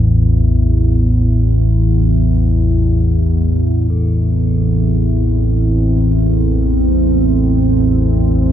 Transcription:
0.00 3.90 A1 medium
0.00 3.90 E2 medium
3.89 8.52 A1 medium
3.89 8.52 E2 medium
3.89 8.52 C4 medium
3.89 8.52 A4 medium
4.95 8.52 A4 medium
6.13 8.52 E5 medium

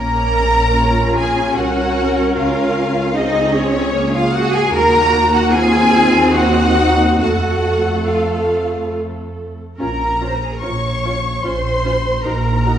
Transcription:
0.00 1.52 A#1 medium
0.00 0.71 A#3 medium
0.00 0.71 C#4 medium
0.00 1.12 A#4 medium
0.00 1.12 A#5 loud
0.75 3.11 C#4 medium
0.75 1.56 F4 medium
1.16 1.56 G#4 loud
1.16 1.56 G#5 medium
1.16 1.57 G#5 medium
1.56 2.36 C2 medium
1.56 2.36 F#4 loud
1.56 3.15 A#4 medium
1.56 2.36 F#5 medium
2.35 4.69 C#2 medium
2.35 3.14 F4 medium
2.35 3.13 F5 medium
2.35 3.14 F5 medium
3.16 3.92 C4 medium
3.16 3.55 D#4 loud
3.16 3.92 G#4 medium
3.16 3.55 D#5 medium
3.55 4.14 C#4 loud
3.55 4.13 C#5 loud
3.55 4.15 C#5 medium
3.94 4.72 A#3 medium
3.94 4.72 G#4 medium
4.14 4.34 F4 loud
4.14 4.34 F5 loud
4.34 4.53 F#4 loud
4.34 4.53 F#5 loud
4.34 4.54 F#5 loud
4.55 4.74 G#4 loud
4.55 4.74 G#5 medium
4.55 4.75 G#5 medium
4.74 7.16 D#2 medium
4.74 5.51 A#3 medium
4.74 5.53 F#4 medium
4.74 5.32 A#4 loud
4.74 5.32 A#5 loud
4.74 5.34 A#5 loud
5.34 5.53 F#4 loud
5.34 5.53 F#5 loud
5.34 5.54 F#5 medium
5.53 7.20 C4 medium
5.53 6.35 F4 medium
5.53 6.35 G#4 loud
5.53 6.35 G#5 loud
6.35 7.20 D#4 medium
6.35 7.19 F#4 loud
6.35 7.20 F#5 loud
6.35 7.19 F#5 loud
7.20 9.58 F2 medium
7.20 9.58 A3 medium
7.20 8.06 F#4 medium
7.20 9.58 A4 medium
7.20 8.06 F#5 medium
7.20 8.07 F#5 medium
8.08 8.93 F4 medium
8.08 8.93 F5 medium
8.08 8.94 F5 medium
9.78 10.52 A#1 medium
9.78 9.87 C#4 medium
9.78 9.87 F4 medium
9.78 10.22 A#4 medium
9.78 10.58 A#5 medium
10.21 10.29 C#4 medium
10.21 10.29 F4 medium
10.25 10.34 C5 medium
10.35 10.44 A#4 medium
10.43 10.52 G#4 medium
10.53 10.62 A#4 medium
10.62 11.35 A#1 medium
10.62 10.71 C#4 soft
10.62 10.71 F4 soft
10.62 11.44 C#5 medium
10.62 11.44 C#6 medium
11.05 11.13 C#4 soft
11.05 11.13 F4 medium
11.43 12.15 A#1 medium
11.43 11.53 C#4 medium
11.43 11.53 F4 medium
11.43 12.24 C5 medium
11.43 12.24 C6 medium
11.43 12.23 C6 medium
11.85 11.93 C#4 medium
11.85 11.94 F4 medium
12.24 12.78 A#1 medium
12.24 12.33 D#4 medium
12.24 12.34 F#4 medium
12.24 12.78 A#4 medium
12.24 12.78 A#5 medium
12.65 12.73 D#4 medium
12.65 12.73 F#4 medium

